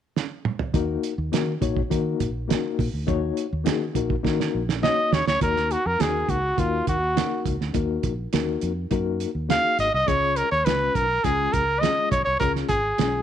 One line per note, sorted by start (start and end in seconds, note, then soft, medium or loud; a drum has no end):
0.16 snare medium
0.45 mid tom medium
0.59 floor tom medium
0.74 0.96 D#2 loud
0.74 1.12 A#3 medium
0.74 1.12 D#4 medium
0.74 1.12 F#4 medium
0.74 1.13 A#4 medium
0.74 kick loud
0.74 closed hi-hat medium
1.03 closed hi-hat medium
1.18 1.29 D#2 medium
1.32 1.55 D#3 loud
1.32 1.51 A#3 medium
1.32 1.51 D#4 medium
1.32 1.52 F#4 medium
1.32 1.52 A#4 medium
1.32 snare loud
1.32 closed hi-hat medium
1.61 1.84 A#1 medium
1.61 1.80 A#3 medium
1.61 1.81 D#4 medium
1.61 1.81 F#4 medium
1.61 1.81 C#5 medium
1.61 kick medium
1.61 closed hi-hat medium
1.77 kick medium
1.90 2.14 D#3 medium
1.90 2.29 A#3 medium
1.90 2.29 D#4 medium
1.90 2.29 F#4 medium
1.90 2.29 A#4 medium
1.90 kick medium
1.90 closed hi-hat medium
2.20 2.54 A#1 medium
2.20 kick medium
2.20 closed hi-hat medium
2.48 2.87 A#3 medium
2.48 2.87 D#4 medium
2.48 2.87 F#4 medium
2.48 2.87 A#4 medium
2.48 snare medium
2.48 closed hi-hat medium
2.79 2.90 A#2 medium
2.79 kick medium
2.79 open hi-hat soft
2.94 3.05 D2 medium
3.07 3.30 D#2 loud
3.07 3.45 A#3 medium
3.07 3.45 D#4 medium
3.07 3.46 F#4 medium
3.07 3.46 C#5 loud
3.07 kick loud
3.07 closed hi-hat medium
3.37 closed hi-hat medium
3.53 3.68 D#2 medium
3.64 3.89 D#3 medium
3.64 3.84 A#3 medium
3.64 3.84 D#4 medium
3.64 3.85 F#4 medium
3.64 3.85 G#4 medium
3.64 snare loud
3.64 closed hi-hat medium
3.94 4.18 A#1 medium
3.94 4.14 A#3 medium
3.94 4.14 D#4 medium
3.94 4.15 F#4 medium
3.94 4.15 A#4 medium
3.94 kick medium
3.94 closed hi-hat medium
4.10 kick medium
4.23 4.47 D#3 medium
4.23 4.62 A#3 medium
4.23 4.62 D#4 medium
4.23 4.62 F#4 medium
4.23 4.62 A#4 medium
4.23 kick medium
4.23 snare medium
4.40 snare soft
4.55 4.88 A#1 medium
4.69 snare medium
4.82 5.20 A#3 medium
4.82 5.21 D#4 medium
4.82 5.21 F#4 medium
4.82 5.21 C#5 medium
4.82 5.15 D#5 loud
4.82 snare medium
5.12 5.23 D#2 medium
5.12 5.27 C#5 medium
5.12 snare medium
5.27 5.38 D2 medium
5.27 5.41 C#5 medium
5.27 snare medium
5.41 5.75 D#2 medium
5.41 5.79 A#3 medium
5.41 5.79 D#4 medium
5.41 5.79 F#4 medium
5.41 5.80 A#4 medium
5.41 5.73 A#4 medium
5.41 kick loud
5.41 closed hi-hat medium
5.57 snare soft
5.71 5.88 F#4 medium
5.71 closed hi-hat medium
5.86 5.97 F2 medium
5.86 6.03 A#4 medium
5.99 6.22 D#2 medium
5.99 6.37 A#3 medium
5.99 6.38 D#4 medium
5.99 6.38 F#4 medium
5.99 6.32 G#4 medium
5.99 6.38 A#4 medium
5.99 snare loud
5.99 closed hi-hat medium
6.29 6.51 C#2 medium
6.29 6.61 F#4 medium
6.29 kick medium
6.29 closed hi-hat medium
6.57 6.80 D#2 medium
6.57 6.96 A#3 medium
6.57 6.96 D#4 medium
6.57 6.88 F4 medium
6.57 6.96 F#4 medium
6.57 6.97 A#4 medium
6.57 kick medium
6.57 closed hi-hat medium
6.87 7.21 D#2 medium
6.87 7.42 F#4 medium
6.87 kick medium
6.87 closed hi-hat medium
7.16 7.54 A#3 medium
7.16 7.54 D#4 medium
7.16 7.55 F#4 medium
7.16 7.55 A#4 medium
7.16 snare loud
7.16 closed hi-hat medium
7.46 7.57 C#2 medium
7.46 kick medium
7.46 closed hi-hat medium
7.61 7.72 D2 medium
7.61 snare soft
7.74 7.97 D#2 medium
7.74 8.12 A#3 medium
7.74 8.13 D#4 medium
7.74 8.13 F#4 medium
7.74 8.13 A#4 medium
7.74 kick loud
7.74 closed hi-hat medium
8.03 8.26 A#1 medium
8.03 kick medium
8.03 closed hi-hat medium
8.33 8.56 D#2 medium
8.33 8.71 A#3 medium
8.33 8.71 D#4 medium
8.33 8.71 F#4 medium
8.33 8.72 A#4 medium
8.33 snare loud
8.33 closed hi-hat medium
8.61 8.85 F2 medium
8.61 closed hi-hat medium
8.91 9.25 F#2 medium
8.91 9.29 A#3 medium
8.91 9.29 D#4 medium
8.91 9.29 F#4 medium
8.91 9.30 A#4 medium
8.91 kick medium
8.91 closed hi-hat medium
9.20 closed hi-hat medium
9.35 9.57 D#2 medium
9.49 9.87 A#3 medium
9.49 9.87 D#4 medium
9.49 9.87 F#4 medium
9.49 9.88 G#4 medium
9.49 9.77 F5 medium
9.49 snare medium
9.49 closed hi-hat medium
9.79 9.90 G#1 medium
9.79 9.93 D#5 medium
9.79 closed hi-hat medium
9.94 10.05 C2 medium
9.94 10.09 D#5 medium
10.06 10.41 C#2 loud
10.06 10.45 G#3 medium
10.06 10.45 C#4 medium
10.06 10.45 F4 medium
10.06 10.46 G#4 medium
10.06 10.38 C#5 medium
10.06 kick loud
10.06 closed hi-hat medium
10.36 10.51 A#4 medium
10.36 closed hi-hat medium
10.51 10.63 D#2 medium
10.51 10.66 C#5 medium
10.65 10.88 C#2 medium
10.65 11.04 G#3 medium
10.65 11.04 C#4 medium
10.65 11.04 F4 medium
10.65 10.97 B4 medium
10.65 11.05 B4 medium
10.65 snare loud
10.65 closed hi-hat medium
10.95 11.17 B1 medium
10.95 11.25 A#4 medium
10.95 kick medium
10.95 closed hi-hat medium
11.24 11.46 C#2 medium
11.24 11.62 G#3 medium
11.24 11.62 C#4 medium
11.24 11.62 F4 medium
11.24 11.54 G#4 medium
11.24 11.63 G#4 medium
11.24 kick medium
11.24 closed hi-hat medium
11.53 11.87 C#2 medium
11.53 11.82 A#4 medium
11.53 kick medium
11.53 closed hi-hat medium
11.80 12.19 G#3 medium
11.80 12.20 C#4 medium
11.80 12.20 F4 medium
11.80 12.20 G#4 medium
11.80 12.10 D#5 medium
11.80 snare medium
11.80 closed hi-hat medium
12.11 12.22 B1 medium
12.11 12.24 C#5 medium
12.11 kick medium
12.11 closed hi-hat medium
12.25 12.37 C2 medium
12.25 12.39 C#5 medium
12.40 12.63 C#2 medium
12.40 12.78 G#3 medium
12.40 12.78 C#4 medium
12.40 12.78 F4 medium
12.40 12.78 G#4 medium
12.40 12.53 A#4 medium
12.40 kick loud
12.40 closed hi-hat medium
12.56 snare soft
12.69 12.91 G#1 medium
12.69 13.22 G#4 medium
12.69 kick medium
12.69 closed hi-hat medium
12.98 13.21 B1 medium
12.98 13.22 G#3 medium
12.98 13.22 C#4 medium
12.98 13.22 F4 medium
12.98 13.22 G#4 medium
12.98 snare loud
12.98 closed hi-hat medium